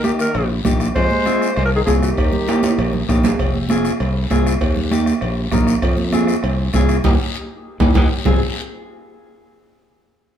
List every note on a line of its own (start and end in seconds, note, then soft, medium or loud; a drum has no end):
0.04 0.12 D#3 medium
0.04 0.25 A#3 medium
0.04 0.26 D#4 medium
0.04 0.11 G4 medium
0.04 0.26 G4 medium
0.04 bombo rim medium
0.04 high conga medium
0.04 short guiro medium
0.19 0.51 D#3 medium
0.19 0.52 A#4 medium
0.19 bombo rim medium
0.19 short guiro medium
0.35 0.59 A#1 loud
0.35 bombo rim medium
0.35 cowbell medium
0.35 long guiro medium
0.65 0.89 A#1 medium
0.65 0.86 A#3 medium
0.65 0.87 D#4 medium
0.65 0.87 G4 medium
0.65 bombo low medium
0.65 bombo rim medium
0.65 high conga medium
0.65 low conga medium
0.65 short guiro medium
0.80 bombo rim medium
0.80 short guiro medium
0.95 1.08 F2 medium
0.95 1.52 G#3 medium
0.95 1.52 C5 loud
0.95 bombo low medium
0.95 bombo rim medium
0.95 cowbell loud
0.95 long guiro medium
1.11 high conga medium
1.25 1.47 C4 medium
1.25 1.48 F4 medium
1.25 1.48 G#4 medium
1.25 bombo rim medium
1.25 high conga medium
1.25 short guiro medium
1.41 bombo rim medium
1.41 short guiro medium
1.55 1.81 C2 medium
1.55 1.65 G#3 medium
1.55 1.65 C5 medium
1.55 bombo rim medium
1.55 cowbell medium
1.55 long guiro medium
1.65 1.70 F3 medium
1.65 1.70 A#4 medium
1.75 1.80 D#3 medium
1.75 1.81 G#4 medium
1.85 2.11 C2 medium
1.85 1.92 F3 medium
1.85 2.08 C4 medium
1.85 2.08 F4 medium
1.85 1.93 G#4 medium
1.85 2.09 G#4 medium
1.85 bombo low medium
1.85 bombo rim medium
1.85 high conga medium
1.85 low timbale medium
1.85 short guiro medium
2.00 3.03 D#3 medium
2.00 3.05 G4 medium
2.00 bombo rim medium
2.00 short guiro medium
2.17 2.30 D#2 medium
2.17 bombo low medium
2.17 bombo rim medium
2.17 cowbell medium
2.17 long guiro medium
2.33 high conga medium
2.33 low conga medium
2.48 2.69 A#3 medium
2.48 2.69 D#4 medium
2.48 2.70 G4 loud
2.48 bombo rim medium
2.48 high conga medium
2.48 high timbale loud
2.48 short guiro medium
2.63 bombo rim medium
2.63 high conga loud
2.63 high timbale medium
2.63 short guiro medium
2.78 3.03 A#1 loud
2.78 bombo rim medium
2.78 cowbell medium
2.78 long guiro medium
2.93 low conga medium
3.08 3.33 A#1 medium
3.08 3.30 A#3 medium
3.08 3.30 D#4 medium
3.08 3.30 G4 medium
3.08 bombo low medium
3.08 bombo rim medium
3.08 low timbale medium
3.08 short guiro medium
3.24 bombo rim medium
3.24 low conga loud
3.24 low timbale loud
3.24 short guiro medium
3.39 3.88 F1 loud
3.39 bombo low medium
3.39 bombo rim medium
3.39 cowbell loud
3.39 long guiro medium
3.54 high conga medium
3.69 3.91 C4 medium
3.69 3.91 F4 medium
3.69 3.92 G#4 medium
3.69 bombo rim medium
3.69 high conga medium
3.69 short guiro medium
3.85 bombo rim medium
3.85 short guiro medium
4.00 4.25 C2 medium
4.00 bombo rim medium
4.00 cowbell medium
4.00 long guiro medium
4.30 4.55 C2 medium
4.30 4.52 C4 medium
4.30 4.52 F4 medium
4.30 4.52 G#4 medium
4.30 bombo low medium
4.30 bombo rim medium
4.30 high conga medium
4.30 low timbale medium
4.30 short guiro medium
4.46 bombo rim medium
4.46 short guiro medium
4.61 5.10 D#2 loud
4.61 bombo low medium
4.61 bombo rim medium
4.61 cowbell loud
4.61 long guiro medium
4.76 low conga medium
4.91 5.13 A#3 medium
4.91 5.13 D#4 medium
4.91 5.13 G4 loud
4.91 bombo rim medium
4.91 high conga medium
4.91 short guiro medium
5.06 bombo rim medium
5.06 short guiro medium
5.21 5.46 A#1 medium
5.21 bombo rim medium
5.21 cowbell medium
5.21 long guiro medium
5.51 5.77 A#1 medium
5.51 5.74 A#3 medium
5.51 5.74 D#4 medium
5.51 5.74 A#4 medium
5.51 bombo low medium
5.51 bombo rim medium
5.51 high conga medium
5.51 low conga medium
5.51 low timbale medium
5.51 short guiro medium
5.67 bombo rim medium
5.67 short guiro medium
5.82 6.31 F2 loud
5.82 bombo low medium
5.82 bombo rim medium
5.82 cowbell loud
5.82 long guiro medium
5.97 high conga medium
6.12 6.34 C4 medium
6.12 6.35 F4 medium
6.12 6.35 G#4 loud
6.12 bombo rim medium
6.12 high conga medium
6.12 short guiro medium
6.27 bombo rim medium
6.27 short guiro medium
6.43 6.68 C2 loud
6.43 bombo rim medium
6.43 cowbell medium
6.43 long guiro medium
6.73 6.98 C2 loud
6.73 6.95 C4 medium
6.73 6.96 F4 medium
6.73 6.96 G#4 loud
6.73 bombo low medium
6.73 bombo rim medium
6.73 high conga medium
6.73 low timbale medium
6.73 short guiro medium
6.89 bombo rim medium
6.89 short guiro medium
7.04 7.16 D#2 loud
7.04 7.14 A#3 loud
7.04 7.14 D#4 loud
7.04 7.14 G4 loud
7.04 bombo low loud
7.04 low conga loud
7.04 high timbale medium
7.04 long guiro loud
7.80 7.92 D#2 loud
7.80 7.91 A#3 medium
7.80 7.90 D#4 medium
7.80 7.91 G4 medium
7.80 bombo low loud
7.80 low conga medium
7.80 high timbale loud
7.80 long guiro medium
7.95 8.07 D#2 loud
7.95 8.06 A#3 loud
7.95 8.06 D#4 medium
7.95 8.06 G4 loud
7.95 bombo low loud
7.95 low conga loud
7.95 high timbale loud
7.95 long guiro loud
8.25 8.40 F1 medium
8.25 8.40 C4 medium
8.25 8.40 F4 medium
8.25 8.40 G#4 medium
8.25 bombo low loud
8.25 low conga loud
8.25 low timbale loud
8.25 long guiro loud